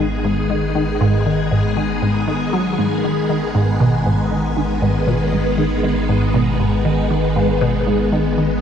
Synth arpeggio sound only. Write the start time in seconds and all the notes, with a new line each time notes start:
0.00 D#3
0.25 G#2
0.50 D#3
0.75 D#3
1.01 G#2
1.26 D#3
1.51 G#2
1.77 D#3
2.02 G#2
2.28 D#3
2.53 F#3
2.79 G#2
3.04 D#3
3.29 D#3
3.55 G#2
3.80 B2
4.06 G#2
4.31 D#3
4.57 D#3
4.82 G#2
5.07 B2
5.33 G#2
5.58 D#3
5.83 D#3
6.09 G#2
6.34 B2
6.60 G#2
6.85 D#3
7.11 D#3
7.36 G#2
7.61 B2
7.87 G#2
8.12 D#3
8.38 D#3